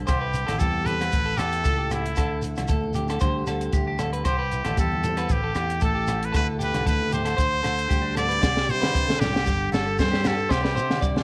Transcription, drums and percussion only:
0.08 kick medium
0.08 cross-stick medium
0.08 closed hi-hat soft
0.08 low agogo medium
0.08 shekere medium
0.34 closed hi-hat soft
0.34 shekere medium
0.48 cross-stick medium
0.48 closed hi-hat soft
0.48 high conga medium
0.48 low conga medium
0.48 low agogo medium
0.48 shekere soft
0.60 kick medium
0.60 closed hi-hat soft
0.60 shekere medium
0.75 high conga medium
0.86 closed hi-hat soft
0.86 low conga medium
0.86 shekere medium
1.00 cross-stick medium
1.00 closed hi-hat soft
1.00 low agogo medium
1.00 shekere soft
1.12 kick medium
1.12 closed hi-hat soft
1.12 high conga medium
1.12 shekere medium
1.38 cross-stick medium
1.38 closed hi-hat soft
1.38 low agogo medium
1.38 shekere medium
1.53 closed hi-hat soft
1.53 shekere soft
1.65 kick medium
1.65 closed hi-hat soft
1.65 shekere medium
1.90 cross-stick medium
1.90 closed hi-hat medium
1.90 low conga medium
1.90 low agogo medium
1.90 shekere medium
2.06 closed hi-hat medium
2.16 kick medium
2.16 cross-stick medium
2.16 closed hi-hat medium
2.16 low agogo medium
2.16 shekere medium
2.42 closed hi-hat soft
2.42 shekere medium
2.56 cross-stick medium
2.56 closed hi-hat soft
2.56 high conga medium
2.56 low conga medium
2.56 low agogo medium
2.56 shekere soft
2.68 kick medium
2.68 closed hi-hat medium
2.68 shekere medium
2.83 high conga medium
2.94 closed hi-hat soft
2.94 low conga medium
2.94 shekere medium
3.08 cross-stick medium
3.08 closed hi-hat soft
3.08 low agogo medium
3.08 shekere soft
3.20 kick medium
3.20 closed hi-hat medium
3.20 high conga medium
3.20 shekere medium
3.47 cross-stick medium
3.47 closed hi-hat soft
3.47 low agogo medium
3.47 shekere medium
3.61 closed hi-hat medium
3.61 shekere soft
3.73 kick medium
3.73 closed hi-hat soft
3.73 shekere medium
3.99 cross-stick medium
3.99 closed hi-hat medium
3.99 low conga medium
3.99 low agogo medium
3.99 shekere medium
4.13 closed hi-hat soft
4.25 kick medium
4.25 cross-stick medium
4.25 closed hi-hat soft
4.25 low agogo medium
4.25 shekere medium
4.51 closed hi-hat soft
4.51 shekere medium
4.65 cross-stick medium
4.65 closed hi-hat soft
4.65 high conga medium
4.65 low conga medium
4.65 low agogo medium
4.65 shekere soft
4.77 kick medium
4.77 closed hi-hat soft
4.77 shekere medium
4.92 high conga medium
5.04 closed hi-hat soft
5.04 low conga medium
5.04 shekere medium
5.17 cross-stick medium
5.17 closed hi-hat soft
5.17 low agogo medium
5.17 shekere soft
5.29 kick medium
5.29 closed hi-hat soft
5.29 high conga medium
5.29 shekere medium
5.55 cross-stick medium
5.55 closed hi-hat soft
5.55 low agogo medium
5.55 shekere medium
5.70 closed hi-hat soft
5.70 shekere soft
5.81 kick medium
5.81 closed hi-hat soft
5.81 shekere medium
6.07 cross-stick medium
6.07 closed hi-hat medium
6.07 low conga medium
6.07 low agogo medium
6.07 shekere medium
6.23 closed hi-hat soft
6.34 kick medium
6.34 cross-stick medium
6.34 closed hi-hat medium
6.34 low agogo medium
6.34 shekere medium
6.60 closed hi-hat soft
6.60 high conga medium
6.60 shekere medium
6.74 cross-stick medium
6.74 closed hi-hat soft
6.74 high conga medium
6.74 low conga medium
6.74 low agogo medium
6.87 kick medium
6.87 closed hi-hat medium
6.87 shekere medium
7.01 high conga medium
7.12 closed hi-hat soft
7.12 low conga medium
7.12 shekere medium
7.26 cross-stick medium
7.26 closed hi-hat medium
7.26 low agogo medium
7.26 shekere soft
7.38 kick medium
7.38 closed hi-hat soft
7.38 shekere medium
7.64 cross-stick medium
7.64 closed hi-hat soft
7.64 low agogo medium
7.64 shekere medium
7.79 closed hi-hat medium
7.79 shekere soft
7.91 kick medium
7.91 closed hi-hat soft
7.91 shekere medium
8.17 cross-stick medium
8.17 closed hi-hat medium
8.17 low conga medium
8.17 low agogo medium
8.17 shekere medium
8.31 closed hi-hat medium
8.43 kick loud
8.43 snare medium
8.43 low agogo medium
8.43 shekere medium
8.57 snare medium
8.69 shekere medium
8.82 snare medium
8.82 high conga medium
8.82 low agogo medium
8.82 shekere soft
8.95 kick loud
8.95 shekere medium
9.09 snare medium
9.09 high conga medium
9.21 snare medium
9.21 low conga medium
9.21 shekere loud
9.34 snare medium
9.34 low agogo medium
9.34 shekere soft
9.46 kick medium
9.46 shekere medium
9.72 snare medium
9.72 low agogo medium
9.72 shekere medium
9.99 kick medium
9.99 snare medium
9.99 shekere medium
10.13 snare medium
10.24 snare medium
10.24 low conga medium
10.24 low agogo medium
10.24 shekere loud
10.39 shekere soft
10.50 kick medium
10.50 snare medium
10.50 low agogo medium
10.50 shekere medium
10.65 snare medium
10.77 shekere loud
10.90 snare medium
10.90 high conga medium
10.90 low agogo medium
10.90 shekere soft
11.02 kick loud
11.02 shekere medium
11.16 snare medium
11.16 high conga medium

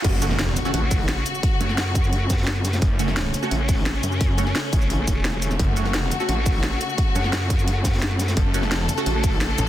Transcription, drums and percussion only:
0.04 kick loud
0.04 closed hi-hat medium
0.04 crash loud
0.22 closed hi-hat medium
0.22 shaker medium
0.30 snare soft
0.30 closed hi-hat soft
0.39 snare loud
0.39 closed hi-hat medium
0.39 closed hi-hat loud
0.47 snare medium
0.56 closed hi-hat medium
0.56 shaker medium
0.65 snare medium
0.65 shaker soft
0.74 closed hi-hat loud
0.74 closed hi-hat medium
0.91 kick loud
0.91 closed hi-hat medium
0.91 open hi-hat medium
0.91 shaker medium
1.08 snare loud
1.08 closed hi-hat medium
1.17 snare soft
1.26 closed hi-hat medium
1.26 shaker medium
1.35 shaker soft
1.43 kick loud
1.43 closed hi-hat medium
1.52 snare soft
1.60 closed hi-hat medium
1.60 shaker medium
1.69 snare soft
1.77 snare loud
1.77 closed hi-hat loud
1.95 kick loud
1.95 closed hi-hat medium
1.95 shaker medium
2.04 snare soft
2.04 shaker soft
2.12 closed hi-hat medium
2.30 kick medium
2.30 snare loud
2.30 closed hi-hat medium
2.30 shaker medium
2.38 snare medium
2.38 closed hi-hat medium
2.43 snare medium
2.43 closed hi-hat medium
2.47 snare loud
2.47 closed hi-hat medium
2.56 snare soft
2.64 snare loud
2.64 closed hi-hat medium
2.64 shaker medium
2.73 snare loud
2.73 snare soft
2.73 closed hi-hat medium
2.73 shaker soft
2.81 kick loud
2.81 closed hi-hat medium
2.99 closed hi-hat medium
2.99 shaker medium
3.08 snare soft
3.08 closed hi-hat soft
3.16 snare loud
3.16 closed hi-hat medium
3.26 snare medium
3.34 closed hi-hat medium
3.34 shaker medium
3.42 snare medium
3.42 shaker soft
3.51 closed hi-hat medium
3.69 kick loud
3.69 closed hi-hat medium
3.69 open hi-hat medium
3.69 shaker medium
3.86 snare loud
3.86 closed hi-hat medium
3.95 snare soft
4.03 closed hi-hat medium
4.03 shaker medium
4.12 shaker soft
4.21 kick loud
4.21 closed hi-hat medium
4.30 snare soft
4.38 closed hi-hat medium
4.38 shaker medium
4.47 snare soft
4.55 snare loud
4.55 closed hi-hat medium
4.73 kick loud
4.73 closed hi-hat medium
4.73 shaker medium
4.82 snare soft
4.82 shaker soft
4.90 closed hi-hat medium
5.07 kick medium
5.07 closed hi-hat medium
5.07 shaker medium
5.24 snare loud
5.24 closed hi-hat medium
5.33 snare soft
5.42 closed hi-hat medium
5.42 shaker medium
5.51 snare soft
5.51 shaker soft
5.59 kick loud
5.59 closed hi-hat medium
5.76 closed hi-hat medium
5.76 shaker medium
5.85 snare soft
5.85 closed hi-hat soft
5.94 snare loud
5.94 closed hi-hat medium
6.03 snare medium
6.11 closed hi-hat medium
6.11 shaker medium
6.20 snare medium
6.20 shaker soft
6.29 closed hi-hat medium
6.46 kick loud
6.46 closed hi-hat medium
6.46 open hi-hat medium
6.46 shaker medium
6.62 snare loud
6.62 closed hi-hat medium
6.73 snare soft
6.81 closed hi-hat medium
6.81 shaker medium
6.89 shaker soft
6.98 kick loud
6.98 closed hi-hat medium
7.07 snare soft
7.16 closed hi-hat medium
7.16 shaker medium
7.24 snare soft
7.32 snare loud
7.32 closed hi-hat medium
7.50 kick loud
7.50 closed hi-hat medium
7.50 shaker medium
7.59 snare soft
7.59 shaker soft
7.67 closed hi-hat medium
7.84 kick medium
7.84 snare loud
7.84 closed hi-hat medium
7.84 shaker medium
7.93 snare medium
7.93 closed hi-hat medium
7.98 snare medium
7.98 closed hi-hat medium
8.02 snare loud
8.02 closed hi-hat medium
8.11 snare soft
8.19 snare loud
8.19 closed hi-hat medium
8.19 shaker medium
8.28 snare loud
8.28 snare soft
8.28 closed hi-hat medium
8.28 shaker soft
8.37 kick loud
8.37 closed hi-hat medium
8.54 closed hi-hat medium
8.54 shaker medium
8.63 snare soft
8.63 closed hi-hat soft
8.71 snare loud
8.71 closed hi-hat medium
8.80 snare medium
8.89 closed hi-hat medium
8.89 shaker medium
8.97 snare medium
8.97 shaker soft
9.06 closed hi-hat medium
9.23 kick loud
9.23 closed hi-hat medium
9.23 open hi-hat medium
9.23 shaker medium
9.41 snare loud
9.41 closed hi-hat loud
9.41 closed hi-hat medium
9.50 snare soft
9.57 closed hi-hat medium
9.57 shaker medium

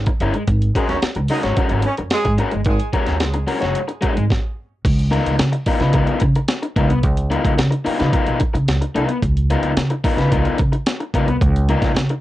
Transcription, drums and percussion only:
0.06 kick loud
0.06 closed hi-hat medium
0.20 closed hi-hat medium
0.34 closed hi-hat soft
0.48 kick loud
0.48 closed hi-hat medium
0.62 closed hi-hat medium
0.75 kick medium
0.75 closed hi-hat medium
0.89 snare soft
0.89 closed hi-hat medium
1.02 snare loud
1.02 closed hi-hat medium
1.15 closed hi-hat medium
1.29 open hi-hat medium
1.43 snare soft
1.43 closed hi-hat medium
1.57 kick loud
1.57 closed hi-hat medium
1.69 closed hi-hat soft
1.82 closed hi-hat medium
1.97 closed hi-hat medium
2.10 snare loud
2.10 closed hi-hat loud
2.25 kick medium
2.25 closed hi-hat medium
2.38 closed hi-hat medium
2.51 closed hi-hat soft
2.65 kick loud
2.65 closed hi-hat medium
2.80 closed hi-hat medium
2.93 kick medium
2.93 closed hi-hat medium
3.07 snare soft
3.07 closed hi-hat medium
3.20 snare loud
3.20 closed hi-hat medium
3.34 closed hi-hat medium
3.48 open hi-hat medium
3.62 snare soft
3.62 closed hi-hat medium
3.75 closed hi-hat medium
3.89 closed hi-hat soft
4.02 kick medium
4.02 closed hi-hat medium
4.17 closed hi-hat medium
4.30 kick loud
4.30 snare medium
4.85 kick loud
4.85 closed hi-hat medium
4.85 crash medium
4.99 closed hi-hat medium
5.13 closed hi-hat medium
5.26 closed hi-hat medium
5.39 snare loud
5.39 closed hi-hat medium
5.53 closed hi-hat medium
5.66 kick loud
5.66 open hi-hat medium
5.80 snare soft
5.80 closed hi-hat medium
5.93 kick medium
5.93 closed hi-hat loud
6.07 closed hi-hat soft
6.20 kick medium
6.20 closed hi-hat medium
6.35 closed hi-hat medium
6.48 snare loud
6.48 closed hi-hat loud
6.63 closed hi-hat medium
6.76 kick medium
6.76 closed hi-hat medium
6.90 closed hi-hat soft
7.03 kick loud
7.03 closed hi-hat medium
7.17 closed hi-hat medium
7.31 closed hi-hat medium
7.45 kick medium
7.45 closed hi-hat medium
7.58 snare loud
7.58 closed hi-hat loud
7.72 closed hi-hat medium
7.86 open hi-hat medium
8.00 snare soft
8.00 closed hi-hat soft
8.13 kick loud
8.13 closed hi-hat loud
8.27 closed hi-hat medium
8.40 kick medium
8.40 closed hi-hat medium
8.55 closed hi-hat medium
8.68 snare loud
8.68 closed hi-hat loud
8.82 closed hi-hat medium
8.96 closed hi-hat medium
9.09 closed hi-hat soft
9.23 kick loud
9.23 closed hi-hat medium
9.37 closed hi-hat medium
9.50 closed hi-hat medium
9.63 closed hi-hat medium
9.77 snare loud
9.77 closed hi-hat loud
9.90 closed hi-hat medium
10.04 kick loud
10.04 open hi-hat medium
10.18 snare soft
10.18 closed hi-hat soft
10.32 kick medium
10.32 closed hi-hat medium
10.45 closed hi-hat soft
10.58 kick medium
10.58 closed hi-hat medium
10.73 closed hi-hat medium
10.86 snare loud
10.86 closed hi-hat loud
11.00 closed hi-hat medium
11.14 kick medium
11.14 closed hi-hat medium
11.28 closed hi-hat soft
11.41 kick loud
11.41 closed hi-hat medium
11.56 closed hi-hat medium
11.69 closed hi-hat medium
11.82 kick medium
11.82 snare soft
11.82 closed hi-hat medium
11.96 snare loud
11.96 closed hi-hat loud
12.09 closed hi-hat medium

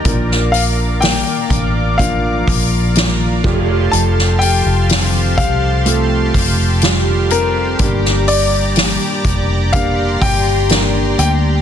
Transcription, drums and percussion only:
0.05 kick loud
0.05 hi-hat pedal medium
0.05 open hi-hat medium
0.31 snare soft
0.54 hi-hat pedal medium
0.54 open hi-hat medium
1.02 snare loud
1.02 hi-hat pedal medium
1.02 open hi-hat medium
1.50 kick medium
1.50 hi-hat pedal medium
1.50 open hi-hat medium
1.99 kick medium
1.99 hi-hat pedal medium
1.99 open hi-hat medium
2.48 kick medium
2.48 hi-hat pedal medium
2.48 open hi-hat medium
2.95 snare loud
2.95 hi-hat pedal medium
2.95 open hi-hat medium
3.44 kick loud
3.44 crash medium
3.93 hi-hat pedal medium
3.93 open hi-hat medium
4.18 snare soft
4.41 hi-hat pedal medium
4.41 open hi-hat medium
4.89 snare loud
4.89 hi-hat pedal medium
4.89 open hi-hat medium
5.38 kick loud
5.38 hi-hat pedal medium
5.38 open hi-hat medium
5.86 hi-hat pedal medium
5.86 open hi-hat medium
6.34 kick medium
6.34 hi-hat pedal medium
6.34 open hi-hat medium
6.82 snare loud
6.82 hi-hat pedal medium
6.82 open hi-hat medium
7.30 hi-hat pedal medium
7.30 open hi-hat medium
7.79 kick loud
7.79 hi-hat pedal medium
7.79 open hi-hat medium
8.05 snare soft
8.28 hi-hat pedal medium
8.28 open hi-hat medium
8.76 snare loud
8.76 hi-hat pedal medium
8.76 open hi-hat medium
9.24 kick medium
9.24 hi-hat pedal medium
9.24 open hi-hat medium
9.73 kick medium
9.73 hi-hat pedal medium
9.73 open hi-hat medium
10.21 kick medium
10.21 hi-hat pedal medium
10.21 open hi-hat medium
10.69 snare loud
10.69 hi-hat pedal medium
10.69 open hi-hat medium
11.19 hi-hat pedal medium
11.19 open hi-hat medium

